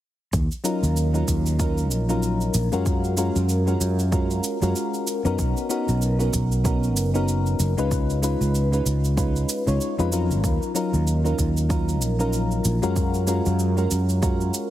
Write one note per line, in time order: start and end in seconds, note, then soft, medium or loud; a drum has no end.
0.33 0.47 D#2 medium
0.33 kick loud
0.33 cabasa soft
0.51 cabasa soft
0.64 1.10 F#3 medium
0.64 1.10 C#4 medium
0.64 1.10 D#4 medium
0.64 1.10 F4 medium
0.64 1.10 A#4 medium
0.64 cabasa medium
0.83 1.23 D#2 medium
0.83 cabasa soft
0.97 cabasa soft
1.14 1.56 F#3 medium
1.14 1.56 C#4 medium
1.14 1.56 D#4 medium
1.14 1.56 F4 medium
1.14 1.57 A#4 medium
1.14 cabasa soft
1.28 1.91 D#2 medium
1.28 kick medium
1.28 cabasa medium
1.46 cabasa soft
1.59 2.05 F#3 medium
1.59 2.05 C#4 medium
1.59 2.05 D#4 medium
1.59 2.05 F4 medium
1.59 2.05 A#4 medium
1.59 kick loud
1.59 cabasa soft
1.78 cabasa soft
1.91 2.49 A#1 medium
1.91 cabasa medium
2.09 2.68 F#3 medium
2.09 2.68 C#4 medium
2.09 2.68 D#4 medium
2.09 2.68 F4 medium
2.09 2.69 A#4 medium
2.09 cabasa soft
2.23 cabasa soft
2.41 cabasa soft
2.54 2.68 A#1 medium
2.54 cabasa medium
2.72 3.29 F#2 medium
2.72 3.14 G#3 medium
2.72 3.14 C#4 medium
2.72 3.14 F4 medium
2.72 3.15 F#4 medium
2.72 3.15 A#4 medium
2.72 cabasa soft
2.86 kick loud
2.86 cabasa soft
3.04 cabasa soft
3.17 3.63 G#3 medium
3.17 3.63 C#4 medium
3.17 3.63 F4 medium
3.17 3.63 F#4 medium
3.17 3.63 A#4 medium
3.17 cabasa medium
3.36 3.76 F#2 medium
3.36 cabasa soft
3.49 cabasa soft
3.67 4.09 G#3 medium
3.67 4.09 C#4 medium
3.67 4.09 F4 medium
3.67 4.09 F#4 medium
3.67 4.09 A#4 medium
3.67 cabasa soft
3.81 4.39 F#2 medium
3.81 cabasa medium
3.99 cabasa soft
4.11 4.57 G#3 medium
4.11 4.58 C#4 medium
4.11 4.58 F4 medium
4.11 4.58 F#4 medium
4.11 4.58 A#4 medium
4.11 kick loud
4.11 cabasa soft
4.31 cabasa soft
4.44 cabasa medium
4.62 4.72 F#2 medium
4.62 5.21 G#3 medium
4.62 5.21 C#4 medium
4.62 5.21 F4 medium
4.62 5.21 F#4 medium
4.62 5.21 A#4 medium
4.62 cabasa soft
4.76 cabasa soft
4.94 cabasa soft
5.07 cabasa medium
5.25 5.35 F#2 medium
5.25 5.67 B3 medium
5.25 5.67 C#4 medium
5.25 5.67 D#4 medium
5.25 5.67 F#4 medium
5.25 5.68 A#4 medium
5.25 cabasa soft
5.39 5.52 B1 medium
5.39 kick loud
5.39 cabasa soft
5.57 cabasa soft
5.69 6.15 B3 medium
5.69 6.15 C#4 medium
5.69 6.16 D#4 medium
5.69 6.16 F#4 medium
5.69 6.16 A#4 medium
5.69 cabasa medium
5.88 6.28 B1 medium
5.88 cabasa soft
6.02 cabasa soft
6.19 6.61 B3 medium
6.19 6.61 C#4 medium
6.19 6.61 D#4 medium
6.19 6.62 F#4 medium
6.19 6.62 A#4 medium
6.19 cabasa soft
6.33 6.96 B1 medium
6.33 kick medium
6.33 cabasa medium
6.52 cabasa soft
6.64 7.10 B3 medium
6.64 7.10 C#4 medium
6.64 7.10 D#4 medium
6.64 7.11 F#4 medium
6.64 7.11 A#4 medium
6.64 kick loud
6.64 cabasa soft
6.83 cabasa soft
6.96 7.54 F#1 medium
6.96 cabasa medium
7.14 7.73 B3 medium
7.14 7.73 C#4 medium
7.14 7.73 D#4 medium
7.14 7.74 F#4 medium
7.14 7.74 A#4 medium
7.14 cabasa soft
7.28 cabasa soft
7.46 cabasa soft
7.60 7.73 F#1 medium
7.60 cabasa medium
7.77 8.34 C#2 medium
7.77 8.19 G#3 medium
7.77 8.20 C#4 medium
7.77 8.20 D#4 medium
7.77 8.20 F4 medium
7.77 8.20 B4 loud
7.77 cabasa soft
7.91 kick loud
7.91 cabasa soft
8.10 cabasa soft
8.22 8.68 G#3 medium
8.22 8.68 C#4 medium
8.22 8.68 D#4 medium
8.22 8.68 F4 medium
8.22 8.69 B4 medium
8.22 cabasa medium
8.41 8.81 C#2 medium
8.41 cabasa soft
8.55 cabasa soft
8.72 9.14 G#3 medium
8.72 9.14 C#4 medium
8.72 9.14 D#4 medium
8.72 9.15 F4 medium
8.72 9.15 B4 medium
8.72 cabasa soft
8.86 9.44 C#2 medium
8.86 cabasa medium
9.04 cabasa soft
9.17 9.63 G#3 medium
9.17 9.63 C#4 medium
9.17 9.63 D#4 medium
9.17 9.63 F4 medium
9.17 9.63 B4 medium
9.17 kick loud
9.17 cabasa soft
9.36 cabasa soft
9.49 cabasa medium
9.66 9.77 C#2 medium
9.66 9.94 G#3 medium
9.66 9.94 C#4 medium
9.66 9.94 D#4 medium
9.66 9.95 F4 medium
9.66 9.95 C#5 medium
9.66 cabasa soft
9.81 cabasa soft
9.98 10.32 F2 medium
9.98 10.09 G#3 medium
9.98 10.09 C#4 medium
9.98 10.09 D#4 medium
9.98 10.09 F4 medium
9.98 10.10 B4 loud
9.98 cabasa soft
10.11 10.72 F#3 medium
10.11 10.72 C#4 medium
10.11 10.72 D#4 medium
10.11 10.72 F4 medium
10.11 10.73 A#4 medium
10.11 cabasa medium
10.30 10.41 G#1 medium
10.30 cabasa soft
10.44 10.58 D#2 medium
10.44 kick loud
10.44 cabasa soft
10.62 cabasa soft
10.74 11.20 F#3 medium
10.74 11.21 C#4 medium
10.74 11.21 D#4 medium
10.74 11.21 F4 medium
10.74 11.21 A#4 medium
10.74 cabasa medium
10.93 11.33 D#2 medium
10.93 cabasa soft
11.07 cabasa soft
11.24 11.66 F#3 medium
11.24 11.67 C#4 medium
11.24 11.67 D#4 medium
11.24 11.67 F4 medium
11.24 11.67 A#4 medium
11.24 cabasa soft
11.39 12.02 D#2 medium
11.39 kick medium
11.39 cabasa medium
11.57 cabasa soft
11.69 12.15 F#3 medium
11.69 12.15 C#4 medium
11.69 12.15 D#4 medium
11.69 12.16 F4 medium
11.69 12.16 A#4 medium
11.69 kick loud
11.69 cabasa soft
11.89 cabasa soft
12.02 12.60 A#1 medium
12.02 cabasa medium
12.19 12.78 F#3 medium
12.19 12.78 C#4 medium
12.19 12.79 D#4 medium
12.19 12.79 F4 medium
12.19 12.79 A#4 medium
12.19 cabasa soft
12.33 cabasa soft
12.51 cabasa soft
12.65 12.79 A#1 medium
12.65 cabasa medium
12.82 13.39 F#2 medium
12.82 13.24 G#3 medium
12.82 13.25 C#4 medium
12.82 13.25 F4 medium
12.82 13.25 F#4 medium
12.82 13.25 A#4 loud
12.82 cabasa soft
12.96 kick medium
12.96 cabasa soft
13.14 cabasa soft
13.27 13.73 G#3 medium
13.27 13.73 C#4 medium
13.27 13.73 F4 medium
13.27 13.74 F#4 medium
13.27 13.74 A#4 medium
13.27 cabasa medium
13.46 13.86 F#2 medium
13.46 cabasa soft
13.59 cabasa soft
13.77 14.19 G#3 medium
13.77 14.19 C#4 medium
13.77 14.19 F4 medium
13.77 14.20 F#4 medium
13.77 14.20 A#4 medium
13.77 cabasa soft
13.91 14.49 F#2 medium
13.91 cabasa medium
14.09 cabasa soft
14.22 14.68 G#3 medium
14.22 14.68 C#4 medium
14.22 14.68 F4 medium
14.22 14.68 F#4 medium
14.22 14.68 A#4 medium
14.22 kick loud
14.22 cabasa soft
14.41 cabasa soft
14.54 cabasa medium